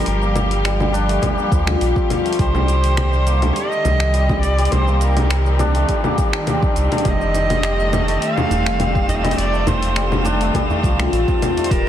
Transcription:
Already playing: D3 F3 G3 A3 C4 D4 G4 A#4
0.06 G1, open hi-hat, shaker
0.22 A#3, shaker
0.36 open hi-hat, low conga, shaker
0.51 open hi-hat, shaker
0.64 G3, finger snap, open hi-hat, shaker
0.80 G3, low conga, shaker
0.93 D4, open hi-hat, shaker
1.08 A3, open hi-hat, shaker
1.22 G3, kick, open hi-hat, low conga, shaker
1.37 A#3, shaker
1.52 D2 F3, kick, open hi-hat, shaker
1.67 finger snap, open hi-hat, low conga, shaker
1.81 A#1, open hi-hat, shaker
1.96 C4, kick, shaker
2.10 open hi-hat, low conga, shaker
2.25 A3, open hi-hat, shaker
2.33 open hi-hat
2.39 C2 D#3 G3 C5, kick, open hi-hat, shaker
2.55 low conga, shaker
2.68 open hi-hat, shaker
2.84 open hi-hat, shaker
2.97 G4, finger snap, open hi-hat, low conga, shaker
3.13 shaker
3.27 A#3, open hi-hat, shaker
3.42 A3, open hi-hat, low conga, shaker
3.54 D#5, open hi-hat, shaker
3.72 shaker
3.85 C2, open hi-hat, low conga, shaker
4.00 finger snap, open hi-hat, shaker
4.13 G3 C4, open hi-hat, shaker
4.29 G3, kick, low conga, shaker
4.41 D5, open hi-hat, shaker
4.58 G3, open hi-hat, shaker
4.65 open hi-hat
4.71 C2 C5, open hi-hat, low conga, shaker
4.88 A#3, shaker
4.94 C5
5.00 A#4, open hi-hat, shaker
5.17 open hi-hat, low conga, shaker
5.30 G3, finger snap, open hi-hat, shaker
5.46 G3, shaker
5.59 D4, open hi-hat, low conga, shaker
5.75 A3, open hi-hat, shaker
5.89 G3, kick, open hi-hat, shaker
6.04 A#3, low conga, shaker
6.18 G3, kick, open hi-hat, shaker
6.33 D4, finger snap, open hi-hat, shaker
6.47 G4, open hi-hat, low conga, shaker
6.62 D4, kick, shaker
6.76 C2, open hi-hat, shaker
6.91 D4, open hi-hat, low conga, shaker
6.98 open hi-hat
7.05 F1 G3 D#5 A5, kick, open hi-hat, low conga, shaker
7.21 shaker
7.34 open hi-hat, djembe tone, shaker
7.50 open hi-hat, low conga, shaker
7.63 G4, finger snap, open hi-hat, shaker
7.75 A3
7.80 shaker
7.93 A3, open hi-hat, djembe slap, djembe tone, low conga, shaker
8.08 A3, open hi-hat, djembe slap, shaker
8.21 F5, open hi-hat, shaker
8.37 djembe tone, low conga, shaker
8.51 F1, open hi-hat, djembe bass, shaker
8.66 finger snap, open hi-hat, shaker
8.80 G3, open hi-hat, djembe tone, low conga, shaker
8.95 G3, kick, shaker
9.08 D#5, open hi-hat, djembe slap, djembe bass, shaker
9.14 F4 F5
9.24 G3 D#5, open hi-hat, low conga, shaker
9.31 open hi-hat
9.38 F1 D5, open hi-hat, shaker
9.53 A3, shaker
9.67 C5, open hi-hat, djembe tone, djembe bass, low conga, shaker
9.83 open hi-hat, shaker
9.96 G3, finger snap, open hi-hat, shaker
10.11 G3, low conga, shaker
10.25 D4, open hi-hat, djembe slap, djembe tone, shaker
10.41 A3, open hi-hat, shaker
10.54 G3, kick, open hi-hat, low conga, shaker
10.70 A3, djembe bass, shaker
10.83 C2 F3, kick, open hi-hat, shaker
11.00 finger snap, open hi-hat, low conga, shaker
11.12 A1, open hi-hat, shaker
11.28 C4, kick, djembe slap, djembe tone, shaker
11.42 open hi-hat, low conga, shaker
11.57 A3, open hi-hat, djembe tone, shaker
11.64 C5, open hi-hat
11.71 D#1 G3 A#4, kick, open hi-hat, shaker

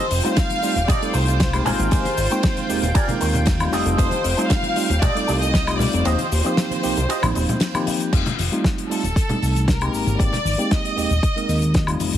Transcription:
Already playing: F4 C5 G5
0.11 F1, open hi-hat, shaker
0.24 G3 A3 C4 D#4 F4, muted clean electric guitar stroke, closed hi-hat, shaker
0.36 F5, muted clean electric guitar stroke, kick, snare, closed hi-hat, ride, shaker
0.50 closed hi-hat, high conga
0.62 G3 A3 C4 D#4 F4, open hi-hat, shaker
0.75 D#1, closed hi-hat, muted conga, shaker
0.87 F4 G4 A4 D5 D#5, kick, closed hi-hat, ride, low conga, shaker
1.01 G3 A3 C4 D#4 A4, closed hi-hat
1.13 C2 C5, muted clean electric guitar stroke, open hi-hat, shaker
1.27 muted clean electric guitar stroke, closed hi-hat, shaker
1.40 kick, snare, closed hi-hat, ride, shaker
1.53 G#3 A#3 C4 D#4 G4, closed hi-hat, high woodblock
1.65 G#1 G4 G#4 A#4 C5, open hi-hat, low conga, shaker
1.79 G#1, closed hi-hat, shaker
1.91 G#1 G#3 A#3 C4 D#4 G4 C5, kick, closed hi-hat, ride, shaker
2.05 closed hi-hat, muted conga
2.17 G#1, open hi-hat, shaker
2.30 G#3 A#3 C4 D#4 G5, muted clean electric guitar stroke, closed hi-hat, shaker
2.43 muted clean electric guitar stroke, kick, snare, closed hi-hat, ride, shaker
2.57 closed hi-hat, high conga
2.69 D#1 G#3 A#3 C4 D#4 G4, open hi-hat, shaker
2.83 D#1, closed hi-hat, muted conga, shaker
2.94 G4 G#4 A#4 D5, kick, closed hi-hat, ride, shaker
3.08 G#3 A#3 C4 D#4 A#4, closed hi-hat, high conga, low conga
3.21 D#2, muted clean electric guitar stroke, open hi-hat, shaker
3.34 muted clean electric guitar stroke, closed hi-hat, muted conga, low conga, shaker
3.46 kick, snare, closed hi-hat, ride, shaker
3.59 G3 A3 C4 D#4 F4, closed hi-hat, high conga, high woodblock
3.72 F1 F4 G4 A4 D#5, open hi-hat, shaker
3.86 F1, closed hi-hat, shaker
3.98 F1 G3 A3 C4 D#4 F4 C5, kick, closed hi-hat, ride, shaker
4.11 closed hi-hat, muted conga
4.24 F1, open hi-hat, shaker
4.37 G3 A3 C4 D#4 F4, muted clean electric guitar stroke, closed hi-hat, shaker
4.49 F5, muted clean electric guitar stroke, kick, snare, closed hi-hat, ride, shaker
4.62 closed hi-hat, high conga
4.76 G3 A3 C4 D#4 F4, open hi-hat, shaker
4.89 D#1, closed hi-hat, muted conga, shaker
5.00 F4 G4 A4 D5 D#5, kick, closed hi-hat, ride, low conga, shaker
5.15 G3 A3 C4 D#4 A4, closed hi-hat
5.28 C2, muted clean electric guitar stroke, open hi-hat, shaker
5.40 D#5, muted clean electric guitar stroke, closed hi-hat, shaker
5.54 kick, snare, closed hi-hat, ride, shaker
5.67 G3 A3 C4 D#4 F4, closed hi-hat, high woodblock
5.78 D5, muted clean electric guitar stroke, open hi-hat, low conga, shaker
5.93 F1, closed hi-hat, shaker
6.04 D#1 F3 A#3 C4 D#4 F4 G4 C5 D#5, closed hi-hat, ride, shaker
6.19 closed hi-hat, muted conga
6.32 D#1, open hi-hat, shaker
6.44 F3 A#3 C4 D#4 G4, muted clean electric guitar stroke, closed hi-hat, shaker
6.57 muted clean electric guitar stroke, snare, closed hi-hat, ride, shaker
6.71 closed hi-hat, high conga
6.83 C2 F3 A#3 C4 D#4 G4, open hi-hat, shaker
6.97 C2, closed hi-hat, muted conga, shaker
7.09 F4 G4 C5 D#5, closed hi-hat, ride, shaker
7.22 A#1 F3 A#3 C4 D#4 C5, closed hi-hat, high conga, low conga, high woodblock
7.34 D#1, muted clean electric guitar stroke, open hi-hat, shaker
7.48 muted clean electric guitar stroke, closed hi-hat, muted conga, low conga, shaker
7.60 snare, closed hi-hat, ride, shaker
7.74 F3 A#3 C4 D#4 G4, closed hi-hat, high conga, high woodblock
7.86 muted clean electric guitar stroke, open hi-hat, high conga, shaker
8.00 closed hi-hat, shaker
8.13 F1 G3 A3 C4 D#4 F4, kick, closed hi-hat, crash, shaker
8.26 closed hi-hat, muted conga, low conga
8.39 F1, open hi-hat, high conga, shaker
8.52 G3 A3 C4 D#4 F4, closed hi-hat, shaker
8.64 kick, snare, closed hi-hat, shaker
8.78 closed hi-hat
8.89 G3 A3 C4 D#4 F4 A4, open hi-hat, shaker
9.03 D#1, closed hi-hat, muted conga, shaker
9.16 kick, snare, closed hi-hat, shaker
9.29 G3 A3 C4 D#4 A4, closed hi-hat, low conga
9.42 C2, open hi-hat, shaker
9.55 closed hi-hat, high conga, shaker
9.68 A#4, kick, snare, closed hi-hat, shaker
9.81 G#3 A#3 C4 D#4 G4, closed hi-hat, high woodblock
9.94 G#1, open hi-hat, shaker
10.07 G#1, closed hi-hat, high conga, shaker
10.19 G#1 G#3 A#3 C4 D#4 G4 D5, kick, closed hi-hat, shaker
10.33 snare, closed hi-hat, muted conga, low conga
10.45 G#1, open hi-hat, high conga, shaker
10.58 G#3 A#3 C4 D#4 G4, closed hi-hat, shaker
10.71 D#5, kick, snare, closed hi-hat, shaker
10.85 closed hi-hat
10.96 D#1 G#3 A#3 C4 D#4 G4, open hi-hat, shaker
11.10 D#1, closed hi-hat, muted conga, shaker
11.23 kick, closed hi-hat, shaker
11.36 G#3 A#3 C4 D#4 A#4, closed hi-hat
11.48 D#2, open hi-hat, shaker
11.62 closed hi-hat, muted conga, shaker
11.74 kick, snare, closed hi-hat, shaker
11.87 G3 A3 C4 D#4 F4, closed hi-hat, high woodblock
12.00 F1, open hi-hat, high conga, shaker
12.13 F1, closed hi-hat, shaker

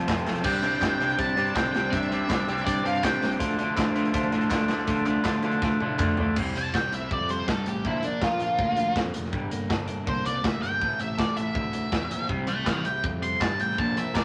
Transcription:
Already playing: C5 F5 A5 E6
0.05 F1 F2 C3 F3 A3 C4 F4 A4, kick, clap, closed hi-hat
0.09 snare
0.17 closed hi-hat
0.24 B1 F2 C3 F3 A3 C4 F4 A4, snare, closed hi-hat
0.35 snare, closed hi-hat
0.43 C2 C3 G3 C4 D4 G4 D5 G5 D6, kick, crash
0.54 closed hi-hat
0.62 C3 G3 C4 D4 G4, closed hi-hat
0.81 C2 C3 G3 C4 D4 G4, kick, snare, clap, closed hi-hat
1.00 C2 C3 G3 C4 D4 G4, closed hi-hat
1.10 closed hi-hat
1.17 C2 C3 G3 C4 D4 G4 A5, kick, closed hi-hat
1.28 closed hi-hat
1.36 G2 C3 G3 C4 D4 G4, closed hi-hat
1.47 closed hi-hat
1.55 C2 C3 G3 C4 D4 G4 G5, kick, snare, clap, closed hi-hat
1.65 closed hi-hat
1.73 C2 C3 G3 C4 D4 G4 G5, snare, closed hi-hat
1.90 C2 C3 G3 C4 D4 G4 E5, kick, closed hi-hat
2.03 closed hi-hat
2.11 C3 G3 C4 D4 G4, closed hi-hat
2.29 C2 C3 G3 C4 D4 G4, kick, snare, clap, closed hi-hat
2.47 C2 C3 G3 C4 D4 G4, closed hi-hat
2.58 closed hi-hat
2.65 C2 C3 G3 C4 D4 G4 D5, kick, closed hi-hat
2.84 G2 C3 G3 C4 D4 G4 F5, closed hi-hat
2.95 closed hi-hat
3.03 C2 C3 G3 C4 D4 G4 G5, kick, snare, clap, closed hi-hat
3.12 closed hi-hat
3.21 C2 C3 G3 C4 D4 G4, snare, closed hi-hat
3.31 snare, closed hi-hat
3.38 D2 D3 F3 A3 D4 F4 C5 F5 A5, kick, closed hi-hat
3.58 D3 F3 A3 D4 F4, closed hi-hat
3.77 D2 D3 F3 A3 D4 F4, kick, snare, clap, closed hi-hat
3.95 D2 D3 F3 A3 D4 F4, closed hi-hat
4.05 closed hi-hat
4.14 D2 D3 F3 A3 D4 F4, kick, closed hi-hat
4.23 closed hi-hat
4.32 A2 D3 F3 A3 D4 F4, closed hi-hat
4.41 closed hi-hat
4.50 D2 D3 F3 A3 D4 F4, kick, snare, clap, closed hi-hat
4.59 closed hi-hat
4.68 D2 D3 F3 A3 D4 F4, snare, closed hi-hat
4.79 snare
4.87 D2 D3 F3 A3 D4 F4, kick, closed hi-hat
4.97 closed hi-hat
5.06 D3 F3 A3 D4 F4, clap, closed hi-hat
5.23 D2 D3 F3 A3 D4 F4, kick, snare, clap, closed hi-hat
5.33 closed hi-hat
5.42 D2 D3 F3 A3 D4 F4, closed hi-hat
5.52 closed hi-hat
5.61 D2 D3 F3 A3 D4 F4, kick, snare
5.80 A2 D3 F3 A3 D4 F4, high tom
5.98 D2 D3 F3 A3 D4 F4, kick, clap, mid tom
6.17 D2 D3 F3 A3 D4 F4, floor tom
6.36 C2 C3 G3 C4, kick, crash
6.55 C2 C3 G3 C4 A5, closed hi-hat
6.74 C2 C3 G3 G4 G5, kick, snare
6.92 C2 C3 G3 E4 E5, closed hi-hat
7.11 F2 C3 G3 C4 D5, kick
7.29 C3 G3 C5, closed hi-hat
7.47 G2 C3 G3 C4 A4, kick, snare
7.66 A1 C3 G3 G4, closed hi-hat
7.85 A#1 A#2 D3 F3 E4, kick
8.03 A#1 A#2 D3 A#3 D4, closed hi-hat
8.21 A#1 A#2 D3 F4 A#4, kick, snare
8.40 A#1 A#2 D3 D4, closed hi-hat
8.59 D2 A#2 D3 A#3, kick
8.77 A#2 D3 F3, closed hi-hat
8.96 F2 A#2 D3 A#3, kick, snare
9.14 F1 A#2 D3 F3, closed hi-hat
9.25 snare
9.32 G1 G2 D3 G3, kick
9.51 G1 G2 D3 A#3, closed hi-hat
9.69 G1 G2 D3 A4, kick, snare
9.87 G1 G2 D3 D4, closed hi-hat
10.06 C2 G2 D3 A#3 C5, kick
10.25 G2 D3 G3 D5, closed hi-hat
10.43 D2 G2 D3 A#3 E5, kick, snare
10.62 G1 G2 D3 G3 G5, snare, closed hi-hat
10.81 A1 A2 E3 A3, kick
10.99 A1 A2 E3 C4 E5, closed hi-hat
11.18 A1 A2 E3 A4 D5, kick, snare
11.36 A1 A2 E3 E4 E5, closed hi-hat
11.54 D2 A2 E3 C4 E5, kick
11.73 A2 E3, closed hi-hat
11.91 E2 A2 E3 C4, kick, snare
12.10 A#1 A2 E3, closed hi-hat
12.29 C2 C3 G3 C4, kick
12.47 C2 C3 G3 C4 E5 A5, closed hi-hat
12.65 C2 C3 G3 G4 D#5 G5, kick, snare, clap
12.84 C2 C3 G3 E4 G5, closed hi-hat
13.02 F2 C3 G3 C4, kick
13.22 C3 G3 C6, closed hi-hat
13.40 G2 C3 G3 C4 A5, kick, snare, clap
13.60 A1 C3 G3 G5, closed hi-hat
13.71 snare
13.77 A#1 A#2 D3 F3 A5, kick
13.96 A#1 A#2 D3 A#3 E5, closed hi-hat
14.14 A#1 A#2 D3 A#4 D5, kick, snare, clap

